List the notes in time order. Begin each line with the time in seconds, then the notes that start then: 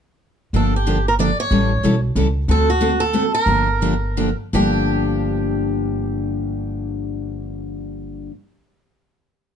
0.53 G1 D3 F3 A#3 D4 G4 A4
0.76 G4
0.86 D3 F3 A#3 D4 G4
1.08 A#4
1.19 D3 F3 A#3 D4 G4 D5
1.40 C#5
1.51 A1 E3 G3 C#4 E4 A4
1.84 B1 E3 G3 C#4 E4 A4
2.15 C#2 E3 G3 C#4 E4 A4
2.48 D2 D3 A3 C4 F#4 A4
2.70 F#4
2.80 D3 A3 C4 F#4 A4
3.00 A4
3.13 D3 A3 C4 F#4 A4
3.34 A#4
3.46 G1 D3 F3 A#3 D4 G4
3.82 D3 F3 A#3 D4 G4
4.17 D3 F3 A#3 D4 G4
4.53 G1 G2 D3 F3 A#3 D4 G4